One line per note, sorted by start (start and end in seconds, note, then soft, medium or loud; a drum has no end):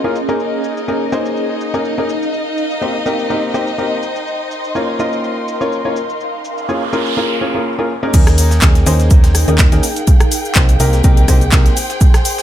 0.00 1.17 C#4 medium
0.00 0.38 D#4 medium
0.00 1.18 G#4 medium
0.00 0.38 D#5 medium
0.00 1.18 D#5 medium
0.04 0.15 A#3 medium
0.04 0.15 C#4 medium
0.04 0.15 F4 medium
0.04 0.15 G#4 medium
0.04 0.15 A#4 medium
0.16 cabasa medium
0.29 0.85 A#3 medium
0.29 0.85 C#4 medium
0.29 0.85 D#4 medium
0.29 0.85 G#4 medium
0.29 0.85 A#4 medium
0.29 cabasa soft
0.40 3.01 D#4 medium
0.40 7.17 D#4 medium
0.40 7.17 D#5 medium
0.40 cabasa soft
0.64 cabasa medium
0.77 cabasa soft
0.88 1.10 A#3 medium
0.88 1.10 C#4 medium
0.88 1.10 D#4 medium
0.88 1.10 G#4 medium
0.88 1.10 A#4 medium
0.88 cabasa soft
1.11 1.71 A#3 medium
1.11 1.71 C#4 medium
1.11 1.71 D#4 medium
1.11 1.71 G#4 medium
1.11 3.02 A#4 medium
1.11 1.71 C5 loud
1.11 cabasa medium
1.26 3.01 F5 medium
1.26 cabasa soft
1.37 cabasa soft
1.61 cabasa medium
1.74 1.91 A#3 medium
1.74 1.91 C#4 medium
1.74 1.91 D#4 medium
1.74 1.91 G#4 medium
1.74 1.91 A#4 medium
1.74 cabasa soft
1.85 cabasa soft
1.98 2.08 A#3 medium
1.98 2.08 C#4 medium
1.98 2.08 D#4 medium
1.98 2.08 G#4 medium
1.98 2.08 A#4 medium
2.09 cabasa medium
2.22 cabasa soft
2.33 4.90 C5 medium
2.33 cabasa soft
2.58 cabasa medium
2.62 4.91 G5 medium
2.71 cabasa soft
2.82 2.94 A#3 medium
2.82 2.94 C4 medium
2.82 2.94 D#4 medium
2.82 2.94 G4 medium
2.82 2.94 C5 medium
2.82 cabasa soft
3.06 3.24 A#3 medium
3.06 3.24 C4 medium
3.06 3.24 D#4 medium
3.06 3.24 G4 medium
3.06 3.24 A#4 medium
3.06 6.98 C6 medium
3.06 cabasa medium
3.19 cabasa soft
3.30 3.49 A#3 medium
3.30 3.49 C4 medium
3.30 3.49 D#4 medium
3.30 3.49 G4 medium
3.30 3.49 A#4 medium
3.30 cabasa soft
3.54 3.66 A#3 medium
3.54 3.66 C4 medium
3.54 3.66 D#4 medium
3.54 3.67 G4 medium
3.54 3.66 C5 medium
3.54 cabasa medium
3.67 cabasa soft
3.78 3.97 A#3 medium
3.78 3.97 C4 medium
3.78 3.97 D#4 medium
3.78 3.97 G4 medium
3.78 3.97 A#4 medium
3.78 cabasa soft
4.03 6.98 A#4 medium
4.03 cabasa medium
4.16 cabasa soft
4.27 cabasa soft
4.51 cabasa medium
4.64 cabasa soft
4.75 4.97 A#3 medium
4.75 4.97 C#4 medium
4.75 4.97 F4 medium
4.75 4.97 A#4 medium
4.75 4.97 C#5 medium
4.75 cabasa soft
4.84 6.98 F5 medium
4.99 5.58 A#3 medium
4.99 5.58 C#4 medium
4.99 5.58 F4 medium
4.99 5.58 A#4 medium
4.99 5.58 D#5 loud
4.99 cabasa medium
5.13 cabasa soft
5.24 cabasa soft
5.48 cabasa medium
5.61 5.78 A#3 medium
5.61 5.78 C#4 medium
5.61 5.78 F4 medium
5.61 5.78 A#4 medium
5.61 5.78 C#5 medium
5.61 cabasa soft
5.72 cabasa soft
5.85 5.95 A#3 medium
5.85 5.95 C#4 medium
5.85 5.95 F4 medium
5.85 5.95 A#4 medium
5.85 5.95 C#5 medium
5.96 cabasa medium
6.10 cabasa soft
6.20 noise sweep medium
6.20 cabasa soft
6.45 cabasa medium
6.58 cabasa soft
6.69 6.81 A#3 medium
6.69 6.81 C#4 medium
6.69 6.81 F4 medium
6.69 6.81 G#4 medium
6.69 6.81 C#5 medium
6.69 cabasa soft
6.93 7.12 A#3 medium
6.93 7.12 C#4 medium
6.93 7.12 F4 medium
6.93 7.11 G#4 medium
6.93 7.11 A#4 medium
6.93 cabasa medium
7.06 cabasa soft
7.17 7.36 A#3 medium
7.17 7.36 C#4 medium
7.17 7.36 F4 medium
7.17 7.36 G#4 medium
7.17 7.36 A#4 loud
7.41 7.52 A#3 medium
7.41 7.52 C#4 medium
7.41 7.52 F4 medium
7.41 7.52 G#4 medium
7.41 7.52 C#5 medium
7.55 7.72 A#3 medium
7.55 7.72 C#4 medium
7.55 7.72 F4 medium
7.55 7.72 G#4 medium
7.55 7.72 A#4 medium
7.79 7.89 A#3 medium
7.79 7.89 C#4 medium
7.79 7.89 F4 medium
7.79 7.89 G#4 medium
7.79 7.89 A#4 medium
8.03 8.12 A#3 medium
8.03 8.12 C#4 medium
8.03 8.13 D#4 medium
8.03 8.12 G#4 medium
8.03 8.13 A#4 medium
8.14 8.60 D#2 loud
8.14 8.58 A#3 loud
8.14 8.58 C#4 medium
8.14 10.75 D#4 medium
8.14 8.58 D#4 medium
8.14 12.42 G#4 medium
8.14 8.58 G#4 medium
8.14 8.58 A#4 loud
8.14 12.42 G5 medium
8.14 kick loud
8.14 closed hi-hat medium
8.14 crash loud
8.14 cabasa soft
8.14 shaker medium
8.27 cross-stick medium
8.27 snare soft
8.27 closed hi-hat medium
8.27 cabasa soft
8.38 open hi-hat loud
8.38 cabasa medium
8.38 shaker medium
8.51 snare medium
8.51 cabasa soft
8.62 8.84 D#2 loud
8.62 8.84 A#3 medium
8.62 8.84 C#4 medium
8.62 8.84 D#4 medium
8.62 8.84 G#4 medium
8.62 8.84 A#4 medium
8.62 kick loud
8.62 snare loud
8.62 clap loud
8.62 closed hi-hat medium
8.62 cabasa soft
8.62 shaker medium
8.75 snare soft
8.75 closed hi-hat medium
8.75 cabasa soft
8.84 9.45 D#2 loud
8.84 9.45 A#3 medium
8.84 9.45 C#4 medium
8.84 9.45 D#4 medium
8.84 9.45 G#4 medium
8.84 10.76 A#4 medium
8.84 9.45 C5 loud
8.84 open hi-hat loud
8.84 cabasa medium
8.84 shaker medium
8.99 10.76 F5 medium
8.99 snare soft
8.99 closed hi-hat soft
8.99 cabasa soft
9.11 kick loud
9.11 closed hi-hat medium
9.11 cabasa soft
9.11 shaker medium
9.24 snare medium
9.24 closed hi-hat medium
9.24 cabasa soft
9.35 cross-stick medium
9.35 open hi-hat loud
9.35 cabasa medium
9.35 shaker medium
9.48 9.69 D#2 medium
9.48 9.66 A#3 medium
9.48 9.66 C#4 medium
9.48 9.66 D#4 medium
9.48 9.66 G#4 medium
9.48 9.66 A#4 medium
9.48 closed hi-hat soft
9.48 cabasa soft
9.58 kick loud
9.58 snare loud
9.58 clap loud
9.58 closed hi-hat medium
9.58 cabasa soft
9.58 shaker medium
9.72 9.80 D#2 medium
9.72 9.82 A#3 medium
9.72 9.83 C#4 medium
9.72 9.83 D#4 medium
9.72 9.83 G#4 medium
9.72 9.83 A#4 medium
9.72 snare soft
9.72 closed hi-hat medium
9.72 cabasa soft
9.83 open hi-hat medium
9.83 cabasa medium
9.83 shaker medium
9.96 closed hi-hat soft
9.96 cabasa soft
10.07 12.42 C5 medium
10.07 kick loud
10.07 closed hi-hat medium
10.07 cabasa soft
10.07 shaker medium
10.20 cross-stick medium
10.20 closed hi-hat medium
10.20 cabasa soft
10.30 12.42 G5 medium
10.30 open hi-hat loud
10.30 cabasa medium
10.30 shaker medium
10.45 cabasa soft
10.55 10.78 C2 loud
10.55 10.68 A#3 medium
10.55 10.68 C4 medium
10.55 10.68 D#4 medium
10.55 10.68 G4 medium
10.55 10.68 C5 medium
10.55 kick loud
10.55 snare loud
10.55 clap loud
10.55 closed hi-hat medium
10.55 cabasa soft
10.55 shaker medium
10.69 closed hi-hat soft
10.69 closed hi-hat medium
10.69 cabasa soft
10.80 11.02 C2 loud
10.80 10.99 A#3 medium
10.80 10.99 C4 medium
10.80 10.99 D#4 medium
10.80 10.99 G4 medium
10.80 10.99 A#4 loud
10.80 12.42 C6 medium
10.80 open hi-hat loud
10.80 cabasa medium
10.80 shaker medium
10.93 snare soft
10.93 closed hi-hat soft
10.93 cabasa soft
11.04 11.26 C2 loud
11.04 11.23 A#3 medium
11.04 11.23 C4 medium
11.04 11.23 D#4 medium
11.04 11.23 G4 medium
11.04 11.23 A#4 loud
11.04 kick loud
11.04 closed hi-hat medium
11.04 cabasa soft
11.04 shaker medium
11.17 closed hi-hat medium
11.17 cabasa soft
11.28 11.50 C2 loud
11.28 11.41 A#3 medium
11.28 11.41 C4 medium
11.28 11.41 D#4 medium
11.28 11.41 G4 medium
11.28 11.41 C5 loud
11.28 kick medium
11.28 cross-stick medium
11.28 open hi-hat loud
11.28 cabasa medium
11.28 shaker medium
11.41 closed hi-hat soft
11.41 cabasa soft
11.52 11.69 C2 loud
11.52 11.71 A#3 medium
11.52 11.71 C4 medium
11.52 11.71 D#4 medium
11.52 11.71 G4 medium
11.52 11.71 A#4 medium
11.52 kick loud
11.52 snare loud
11.52 clap loud
11.52 closed hi-hat medium
11.52 cabasa soft
11.52 shaker medium
11.66 snare soft
11.66 closed hi-hat medium
11.66 cabasa soft
11.76 12.42 A#4 medium
11.76 open hi-hat loud
11.76 cabasa medium
11.76 shaker medium
11.90 snare soft
11.90 closed hi-hat soft
11.90 cabasa soft
12.01 kick loud
12.01 closed hi-hat medium
12.01 cabasa soft
12.01 shaker medium
12.14 cross-stick medium
12.14 snare soft
12.14 closed hi-hat soft
12.14 cabasa soft
12.25 open hi-hat loud
12.25 cabasa medium
12.25 shaker medium
12.38 snare medium
12.38 cabasa soft